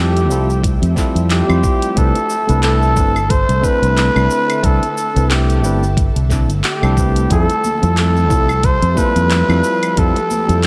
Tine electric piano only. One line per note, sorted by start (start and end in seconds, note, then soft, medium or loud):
0.00 0.26 G3 medium
0.00 0.27 C4 medium
0.00 0.27 E4 medium
0.00 0.28 F4 medium
0.00 0.28 A4 medium
0.29 0.49 G3 medium
0.29 0.49 C4 medium
0.29 0.50 E4 medium
0.29 0.50 F4 medium
0.29 0.50 A4 loud
0.95 1.44 G3 medium
0.95 1.44 C4 medium
0.95 1.44 E4 medium
0.95 1.45 F4 medium
0.95 1.45 A4 loud
1.47 1.93 G3 medium
1.47 1.93 C4 medium
1.47 1.93 E4 medium
1.47 1.94 F4 medium
1.47 1.94 C5 medium
1.95 2.15 A3 medium
1.95 2.16 C4 medium
1.95 2.16 D4 medium
1.95 2.16 E4 medium
1.95 2.17 B4 loud
2.47 2.92 A3 medium
2.47 2.93 C4 medium
2.47 2.93 D4 medium
2.47 2.94 E4 medium
2.47 2.94 B4 medium
2.95 3.15 A3 medium
2.95 3.15 C4 medium
2.95 3.16 D4 medium
2.95 3.16 E4 medium
2.95 3.17 B4 medium
3.61 4.10 A3 loud
3.61 4.11 C4 medium
3.61 4.11 D4 medium
3.61 4.11 E4 medium
3.61 4.12 B4 loud
4.14 4.59 A3 medium
4.14 4.60 C4 medium
4.14 4.60 D4 medium
4.14 4.61 E4 medium
4.14 4.61 B4 medium
4.62 4.82 A3 medium
4.62 4.82 C4 medium
4.62 4.83 D4 medium
4.62 4.83 E4 medium
4.62 4.83 B4 loud
5.14 5.59 A3 medium
5.14 5.60 C4 medium
5.14 5.60 D4 medium
5.14 5.61 E4 medium
5.14 5.61 B4 medium
5.62 5.82 A3 medium
5.62 5.82 C4 medium
5.62 5.83 D4 medium
5.62 5.83 E4 medium
5.62 5.84 B4 medium
6.29 6.49 A3 medium
6.29 6.49 C4 medium
6.29 6.50 D4 medium
6.29 6.50 E4 medium
6.29 6.50 A4 medium
6.82 6.93 A3 loud
6.82 6.94 C4 medium
6.82 6.94 D4 medium
6.82 6.94 E4 medium
6.82 6.95 A4 loud
6.96 7.27 A3 medium
6.96 7.27 C4 medium
6.96 7.27 D4 medium
6.96 7.28 E4 medium
6.96 7.28 B4 medium
7.29 7.49 G3 medium
7.29 7.49 C4 medium
7.29 7.49 E4 medium
7.29 7.50 F4 medium
7.29 7.50 A4 loud
7.81 8.26 G3 medium
7.81 8.27 C4 medium
7.81 8.27 E4 medium
7.81 8.27 F4 medium
7.81 8.28 A4 loud
8.28 8.48 G3 medium
8.28 8.49 C4 medium
8.28 8.49 E4 medium
8.28 8.50 F4 medium
8.28 8.50 A4 medium
8.95 9.44 G3 loud
8.95 9.44 C4 medium
8.95 9.45 E4 medium
8.95 9.45 F4 medium
8.95 9.45 A4 loud
9.48 9.93 G3 medium
9.48 9.93 C4 medium
9.48 9.94 E4 medium
9.48 9.94 F4 medium
9.48 9.94 A4 medium
9.95 10.15 G3 medium
9.95 10.16 C4 medium
9.95 10.16 E4 medium
9.95 10.16 F4 medium
9.95 10.17 A4 loud
10.47 10.67 G3 medium
10.47 10.67 C4 medium
10.47 10.67 E4 medium
10.47 10.67 F4 medium
10.47 10.67 A4 medium